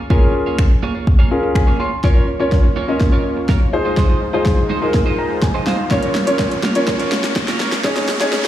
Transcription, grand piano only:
0.10 0.64 C#4 medium
0.10 0.64 F4 medium
0.10 0.64 G#4 medium
0.10 0.64 A#4 medium
1.31 1.71 C#4 medium
1.31 1.71 F4 medium
1.31 1.72 G#4 medium
1.31 1.72 A#4 medium
1.31 1.54 F5 medium
1.56 1.78 G#5 medium
1.80 2.02 C6 medium
2.04 2.24 C#4 medium
2.04 2.24 F4 medium
2.04 2.24 A#4 medium
2.04 2.24 C#5 medium
2.40 2.67 C#4 medium
2.40 2.67 F4 medium
2.40 2.67 A#4 medium
2.40 2.67 C#5 medium
2.88 3.42 C#4 medium
2.88 3.42 F4 medium
2.88 3.42 A#4 medium
2.88 3.42 D#5 medium
3.73 4.21 D#4 medium
3.73 4.22 F4 medium
3.73 4.22 G#4 medium
3.73 4.22 C5 loud
4.33 4.60 D#4 medium
4.33 4.60 F4 medium
4.33 4.61 G#4 medium
4.33 4.61 C5 medium
4.82 5.36 D#4 medium
4.82 5.36 F4 medium
4.82 5.36 G#4 medium
4.82 5.36 A#4 medium
5.18 5.41 A#5 medium
5.43 5.65 G#5 medium
5.67 5.89 F5 medium
5.91 6.11 C#4 medium
5.91 6.11 F4 medium
5.91 6.11 A#4 medium
5.91 6.11 C#5 medium
6.27 6.54 C#4 medium
6.27 6.54 F4 medium
6.27 6.54 A#4 medium
6.27 6.54 C#5 loud
6.75 7.29 C#4 medium
6.75 7.29 F4 medium
6.75 7.29 A#4 medium
6.75 7.29 C#5 medium
7.84 8.04 C#4 medium
7.84 8.05 D#4 medium
7.84 8.05 G#4 medium
7.84 8.05 C#5 medium
8.20 8.47 C#4 medium
8.20 8.47 D#4 medium
8.20 8.48 G#4 medium
8.20 8.48 C#5 loud

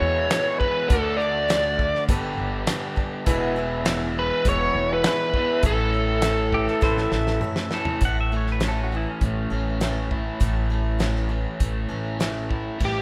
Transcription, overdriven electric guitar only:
0.00 0.88 E2 loud
0.00 0.88 B2 loud
0.00 0.89 E3 medium
0.00 0.89 G#3 loud
0.00 0.89 B3 loud
0.00 0.90 G#4 loud
0.90 2.07 D3 medium
0.90 2.07 A3 medium
0.90 2.08 D4 medium
0.90 2.08 F#4 medium
2.09 3.25 G2 loud
2.09 3.26 D3 loud
2.09 3.26 G3 loud
2.09 3.26 B3 loud
2.09 3.26 D4 loud
2.09 3.27 G4 loud
3.26 5.32 E2 medium
3.26 5.32 B2 loud
3.26 5.36 E3 loud
3.26 5.33 G#3 loud
3.26 5.33 B3 loud
3.26 5.34 E4 loud
5.35 5.64 E2 medium
5.35 5.63 B2 medium
5.35 5.64 E3 medium
5.35 5.63 G#3 medium
5.35 5.63 B3 medium
5.35 5.66 E4 medium
5.64 7.70 A2 medium
5.64 7.70 E3 medium
5.64 7.71 A3 loud
5.64 7.71 C#4 loud
5.64 7.71 E4 loud
7.72 8.01 A2 medium
7.72 8.01 E3 medium
7.72 8.01 A3 medium
7.72 8.00 C#4 medium
7.72 8.00 E4 medium
8.04 10.39 A2 medium
8.33 9.23 A3 medium
8.64 9.52 C#4 medium
8.93 11.30 E3 medium
9.24 9.81 A3 medium
9.52 10.98 C#4 medium
9.82 10.70 A3 medium
10.11 11.61 E4 medium
10.40 11.90 A2 medium
10.71 11.59 A3 medium
11.00 11.88 C#4 medium
11.31 12.78 E3 medium
11.61 12.18 A3 medium
11.89 12.80 C#4 medium
12.19 12.79 A3 medium
12.49 12.80 E4 medium
12.79 13.02 A2 medium
12.79 13.02 E3 medium
12.79 13.02 G3 medium

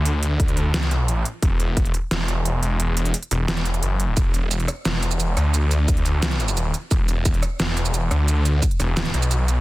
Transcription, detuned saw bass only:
0.00 0.86 D2 medium
0.86 1.08 C2 medium
1.08 1.24 A#1 medium
1.43 1.93 E1 medium
2.11 2.61 E1 medium
2.63 3.13 E1 loud
3.31 3.81 E1 medium
3.83 4.16 F#1 loud
4.85 5.36 E1 medium
5.37 6.73 D2 medium
6.91 7.41 E1 medium
7.60 8.10 E1 medium
8.11 8.61 D2 medium
8.80 9.13 E1 medium
9.14 9.61 B1 loud

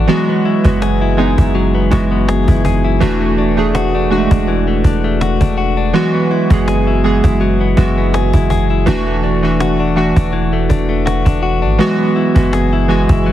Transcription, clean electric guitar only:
0.00 0.17 A3 medium
0.00 0.17 D4 medium
0.00 0.48 F#4 medium
0.09 1.54 F#3 medium
0.29 0.65 B3 medium
0.45 1.01 E4 medium
0.65 1.74 B3 medium
0.82 1.17 G#4 medium
1.01 1.38 E4 medium
1.18 2.27 G#4 medium
1.38 1.91 E4 medium
1.55 3.01 F#3 medium
1.75 2.11 B3 medium
1.91 2.47 E4 medium
2.11 3.21 B3 medium
2.28 2.64 G#4 medium
2.48 2.84 E4 medium
2.65 3.09 G#4 medium
2.84 3.38 E4 medium
3.01 4.48 E3 medium
3.21 3.57 A3 medium
3.38 3.94 D4 medium
3.58 4.66 A3 medium
3.75 4.11 F#4 medium
3.95 4.30 D4 medium
4.11 5.21 F#4 medium
4.31 4.83 D4 medium
4.48 5.94 E3 medium
4.68 5.03 A3 medium
4.84 5.39 D4 medium
5.04 6.02 A3 medium
5.21 5.57 F#4 medium
5.41 5.76 D4 medium
5.58 6.34 F#4 medium
5.77 6.02 D4 medium
5.94 7.40 F#3 medium
6.14 6.50 B3 medium
6.31 6.87 E4 medium
6.51 7.60 B3 medium
6.68 7.03 G#4 medium
6.87 7.24 E4 medium
7.04 8.13 G#4 medium
7.24 7.77 E4 medium
7.41 8.86 F#3 medium
7.61 7.97 B3 medium
7.77 8.33 E4 medium
7.98 9.06 B3 medium
8.14 8.49 G#4 medium
8.34 8.70 E4 medium
8.50 8.95 G#4 medium
8.70 9.23 E4 medium
8.87 10.32 E3 medium
9.07 9.42 A3 medium
9.23 9.79 D4 medium
9.43 10.52 A3 medium
9.60 9.96 F#4 medium
9.80 10.15 D4 medium
9.97 11.05 F#4 medium
10.16 10.68 D4 medium
10.33 11.79 E3 medium
10.53 10.88 A3 medium
10.69 11.24 D4 medium
10.89 11.87 A3 medium
11.06 11.42 F#4 medium
11.25 11.61 D4 medium
11.43 12.19 F#4 medium
11.62 11.87 D4 medium
11.79 13.26 F#3 medium
11.99 12.36 B3 medium
12.16 12.72 E4 medium
12.36 13.32 B3 medium
12.53 12.88 G#4 medium
12.73 13.09 E4 medium
12.89 13.32 G#4 medium
13.10 13.32 E4 medium
13.26 13.32 F#3 medium

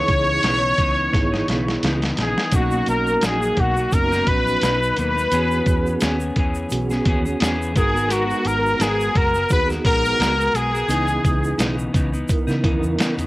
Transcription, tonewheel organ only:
0.00 0.60 B3 medium
0.00 0.60 D#4 medium
0.00 0.61 E4 medium
0.00 0.61 G#4 medium
1.12 1.99 B3 medium
1.12 1.99 D#4 medium
1.12 2.00 E4 medium
1.12 2.00 G#4 medium
2.52 3.39 A#3 medium
2.52 3.39 C#4 medium
2.52 3.39 D#4 medium
2.52 3.40 F#4 medium
3.92 4.78 B3 medium
3.92 4.79 C#4 medium
3.92 4.79 D#4 medium
3.92 4.80 F#4 medium
5.31 6.18 B3 medium
5.31 6.18 C#4 medium
5.31 6.19 F#4 medium
5.31 6.19 G#4 medium
6.70 7.57 B3 medium
6.70 7.58 C#4 medium
6.70 7.58 F#4 medium
6.70 7.58 G#4 medium
7.76 8.88 B3 medium
7.76 8.89 D#4 medium
7.76 8.89 F#4 medium
7.76 8.89 A#4 medium
9.49 10.36 B3 medium
9.49 10.36 D#4 medium
9.49 10.37 F#4 medium
9.49 10.38 G#4 medium
10.89 11.75 B3 medium
10.89 11.76 D#4 medium
10.89 11.76 E4 medium
10.89 11.77 G#4 medium
12.29 13.15 B3 medium
12.29 13.16 D#4 medium
12.29 13.16 E4 medium
12.29 13.17 A#4 medium

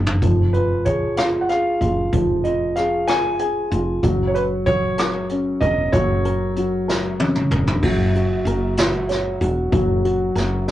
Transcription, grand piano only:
0.53 0.83 B4 medium
0.85 1.15 C#5 medium
1.17 1.23 F5 medium
1.41 1.49 F#5 medium
1.49 2.09 F5 medium
2.44 2.77 D#5 medium
2.76 3.09 F5 medium
3.08 3.38 G#5 loud
3.40 3.99 G#5 medium
4.27 4.34 C#5 medium
4.35 4.42 B4 medium
4.66 5.26 C#5 loud
5.61 5.90 D#5 medium
5.92 7.15 C#5 medium

